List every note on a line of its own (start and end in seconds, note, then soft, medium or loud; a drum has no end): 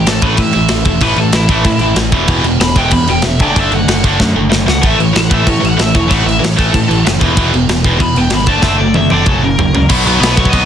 0.07 0.20 A1 medium
0.07 0.21 A2 medium
0.07 0.21 E3 medium
0.07 0.23 A4 medium
0.07 snare loud
0.07 crash medium
0.21 0.36 A1 medium
0.21 0.38 A2 medium
0.21 0.38 E3 medium
0.21 0.38 A3 medium
0.21 0.38 B4 medium
0.21 kick medium
0.21 crash medium
0.37 0.52 A2 medium
0.37 0.52 E3 medium
0.37 1.01 E5 medium
0.37 kick medium
0.37 crash medium
0.53 0.69 A1 medium
0.53 0.68 A2 medium
0.53 0.68 E3 medium
0.53 crash medium
0.68 0.84 A1 medium
0.68 0.84 A2 medium
0.68 0.84 E3 medium
0.68 snare loud
0.68 crash medium
0.85 1.00 E1 medium
0.85 1.01 A2 medium
0.85 1.00 E3 medium
0.85 kick medium
0.85 crash medium
1.00 1.15 A1 medium
1.00 1.17 A2 medium
1.00 1.17 E3 medium
1.00 1.18 A3 loud
1.00 1.18 B4 medium
1.00 kick medium
1.00 crash medium
1.16 1.30 A1 medium
1.16 1.33 A2 medium
1.16 1.33 E3 medium
1.16 1.34 A4 medium
1.16 crash medium
1.32 1.47 A1 medium
1.32 1.48 A2 medium
1.32 1.49 E3 medium
1.32 1.95 E4 medium
1.32 snare loud
1.32 crash medium
1.49 1.63 A1 medium
1.49 1.64 A2 medium
1.49 1.64 E3 medium
1.49 1.65 A3 medium
1.49 kick medium
1.49 crash medium
1.64 1.79 A2 medium
1.64 1.80 A2 medium
1.64 1.80 E3 medium
1.64 kick loud
1.64 crash medium
1.79 1.94 A1 medium
1.79 1.95 A2 medium
1.79 1.96 E3 medium
1.79 crash medium
1.95 2.13 A1 medium
1.95 2.11 A2 medium
1.95 2.11 E3 medium
1.95 snare loud
1.95 crash medium
2.12 2.26 E1 medium
2.12 2.26 E2 loud
2.12 2.27 B2 loud
2.12 2.28 E3 loud
2.12 kick medium
2.12 crash medium
2.28 2.42 E1 medium
2.28 2.43 E2 medium
2.28 2.43 B2 medium
2.28 2.44 E3 loud
2.28 kick medium
2.28 crash medium
2.42 2.57 E1 medium
2.42 2.59 E2 medium
2.42 2.59 B2 medium
2.42 crash medium
2.59 2.73 E1 medium
2.59 2.75 E2 medium
2.59 2.76 B2 medium
2.59 2.76 B5 medium
2.59 snare loud
2.59 crash medium
2.75 2.90 E1 medium
2.75 2.91 E2 medium
2.75 2.92 B2 medium
2.75 2.92 E3 loud
2.75 2.92 G5 medium
2.75 kick medium
2.75 crash medium
2.91 3.06 E2 medium
2.91 3.07 E2 medium
2.91 3.07 B2 medium
2.91 3.08 B5 medium
2.91 kick loud
2.91 crash medium
3.07 3.21 E1 medium
3.07 3.23 E2 medium
3.07 3.23 B2 medium
3.07 3.24 G5 loud
3.07 crash medium
3.22 3.40 E1 medium
3.22 3.39 E2 medium
3.22 3.39 B2 medium
3.22 3.40 E5 medium
3.22 snare loud
3.22 crash medium
3.39 3.54 F#1 medium
3.39 3.55 D3 medium
3.39 3.56 A3 medium
3.39 3.59 D5 medium
3.39 kick medium
3.39 crash medium
3.44 3.56 D4 loud
3.56 3.69 F#1 medium
3.56 3.71 D3 medium
3.56 3.72 A3 medium
3.56 3.72 D4 medium
3.56 3.73 E5 medium
3.56 kick medium
3.56 crash medium
3.70 3.85 F#1 medium
3.70 3.87 D3 medium
3.70 3.87 A3 medium
3.70 4.34 F#5 loud
3.70 crash medium
3.87 4.01 F#1 medium
3.87 4.02 D3 medium
3.87 4.03 A3 medium
3.87 snare loud
3.87 crash medium
4.04 4.18 F#1 medium
4.04 4.19 D3 medium
4.04 4.19 A3 medium
4.04 4.19 D4 medium
4.04 kick medium
4.04 crash medium
4.20 4.33 F#2 medium
4.20 4.34 D3 medium
4.20 4.34 A3 medium
4.20 kick loud
4.20 snare medium
4.36 4.49 F#1 medium
4.36 4.48 D3 medium
4.36 4.49 A3 medium
4.50 4.66 F#1 medium
4.50 4.65 D3 medium
4.50 4.65 A3 medium
4.50 snare medium
4.66 4.81 C#2 medium
4.66 4.81 D3 medium
4.66 4.81 A3 medium
4.66 4.86 F#5 loud
4.66 snare medium
4.81 4.97 A1 medium
4.81 4.95 A2 medium
4.81 4.96 E3 medium
4.81 4.98 A3 loud
4.81 kick loud
4.81 crash medium
4.86 5.02 E5 medium
4.97 5.12 A1 medium
4.97 5.12 A2 medium
4.97 5.12 E3 medium
4.97 crash medium
5.02 5.16 C#5 medium
5.13 5.29 A1 medium
5.13 5.28 A2 medium
5.13 5.28 E3 medium
5.13 snare loud
5.13 crash medium
5.19 5.32 F#5 loud
5.30 5.44 A1 medium
5.30 5.44 A2 medium
5.30 5.45 E3 medium
5.30 5.46 A3 medium
5.30 5.47 E5 medium
5.30 kick medium
5.30 crash medium
5.45 5.59 A2 medium
5.45 5.60 A2 medium
5.45 5.60 E3 medium
5.45 5.63 C#5 medium
5.45 kick medium
5.45 crash medium
5.60 5.77 A1 medium
5.60 5.76 A2 medium
5.60 5.76 E3 medium
5.64 5.79 F#5 loud
5.64 crash medium
5.77 5.92 A1 medium
5.77 5.92 A2 medium
5.77 5.92 E3 medium
5.77 snare loud
5.77 crash medium
5.81 5.95 E5 medium
5.95 6.08 E1 medium
5.95 6.07 A2 medium
5.95 6.08 E3 medium
5.95 6.11 C#5 medium
5.95 kick medium
5.95 crash medium
6.09 6.24 A1 medium
6.09 6.23 A2 loud
6.09 6.24 E3 loud
6.09 6.25 A3 loud
6.09 6.25 F#5 loud
6.09 kick medium
6.09 crash medium
6.24 6.39 A1 medium
6.24 6.38 A2 medium
6.24 6.38 E3 medium
6.24 6.43 E5 medium
6.29 crash medium
6.39 6.56 A1 medium
6.39 6.55 A2 medium
6.39 6.55 E3 medium
6.39 6.58 C#5 medium
6.44 snare loud
6.44 crash medium
6.57 6.72 A1 medium
6.57 6.71 A2 medium
6.57 6.71 E3 medium
6.57 6.72 A3 loud
6.57 7.19 A4 loud
6.57 kick medium
6.57 crash medium
6.72 6.87 A2 medium
6.72 6.87 E3 medium
6.72 kick loud
6.72 crash medium
6.88 7.03 A1 medium
6.88 7.03 A2 medium
6.88 7.03 E3 medium
6.88 crash medium
7.05 7.18 F#1 medium
7.05 7.19 A2 medium
7.05 7.19 E3 medium
7.05 snare loud
7.05 crash medium
7.20 7.34 E1 medium
7.20 7.35 E2 medium
7.20 7.36 B2 loud
7.20 7.36 E3 loud
7.20 kick medium
7.20 crash medium
7.36 7.50 E1 medium
7.36 7.51 E2 medium
7.36 7.52 B2 loud
7.36 7.52 E3 loud
7.36 kick loud
7.36 crash medium
7.53 7.66 E1 medium
7.53 7.67 E2 medium
7.53 7.67 B2 medium
7.53 crash medium
7.68 7.82 E1 medium
7.68 7.83 E2 medium
7.68 7.83 B2 medium
7.68 snare loud
7.68 crash medium
7.84 7.98 E1 medium
7.84 7.98 E2 loud
7.84 7.98 B2 loud
7.84 8.00 E3 loud
7.84 kick medium
7.84 crash medium
7.99 8.14 E2 medium
7.99 8.13 E2 medium
7.99 8.14 B2 medium
7.99 8.16 B5 loud
7.99 kick medium
7.99 crash medium
8.15 8.29 E1 medium
8.15 8.31 E2 medium
8.15 8.31 B2 medium
8.15 8.32 G5 loud
8.15 crash medium
8.30 8.45 G#1 medium
8.30 8.46 E2 medium
8.30 8.46 B2 medium
8.30 snare loud
8.30 crash medium
8.35 8.47 B5 medium
8.46 8.61 F#1 medium
8.46 8.61 D3 loud
8.46 8.62 A3 loud
8.46 8.62 D4 loud
8.46 8.63 A5 loud
8.46 kick medium
8.46 crash medium
8.62 8.76 F#1 loud
8.62 8.78 D3 loud
8.62 8.78 A3 loud
8.62 8.78 D4 medium
8.62 8.78 E5 loud
8.62 kick medium
8.62 snare medium
8.78 8.93 F#1 loud
8.78 8.94 D3 medium
8.78 8.94 A3 medium
8.78 8.94 D5 medium
8.94 9.08 F#1 medium
8.94 9.09 D3 medium
8.94 9.10 A3 medium
8.94 9.11 E5 medium
8.94 high tom medium
9.10 9.24 F#1 medium
9.10 9.26 D3 loud
9.10 9.27 A3 medium
9.10 9.27 D4 medium
9.10 9.26 D5 medium
9.10 high tom medium
9.26 9.40 F#1 medium
9.26 9.42 F#2 loud
9.26 9.42 C#3 loud
9.26 9.42 F#3 loud
9.26 9.42 A4 loud
9.26 kick loud
9.26 mid tom medium
9.41 9.55 F#1 medium
9.41 9.57 F#2 medium
9.41 9.58 C#3 medium
9.41 9.89 A#4 loud
9.58 9.72 F#1 medium
9.58 9.73 F#2 medium
9.58 9.73 C#3 medium
9.58 floor tom medium
9.73 9.87 C#2 medium
9.73 9.89 F#2 medium
9.73 9.89 C#3 medium
9.73 floor tom medium
9.89 10.05 B1 medium
9.89 10.06 B2 medium
9.89 10.05 F#3 loud
9.89 10.04 B3 loud
9.89 kick loud
9.89 crash loud
9.89 crash medium
10.05 10.20 B1 medium
10.05 10.19 B2 medium
10.05 10.20 F#3 loud
10.05 10.20 B3 medium
10.05 crash medium
10.20 10.36 B1 medium
10.20 10.38 B2 medium
10.20 10.37 F#3 loud
10.20 10.37 B3 loud
10.20 10.37 B4 medium
10.20 snare loud
10.20 crash medium
10.34 10.53 B1 medium
10.34 10.51 F#3 loud
10.34 10.53 B3 loud
10.34 10.50 C#5 medium
10.34 kick medium
10.34 crash medium
10.39 10.51 B2 medium
10.45 kick medium
10.50 10.65 B1 loud
10.50 10.65 B2 medium
10.50 10.65 F#3 medium
10.50 10.65 B3 loud
10.50 10.65 D#5 loud
10.50 kick loud
10.50 crash medium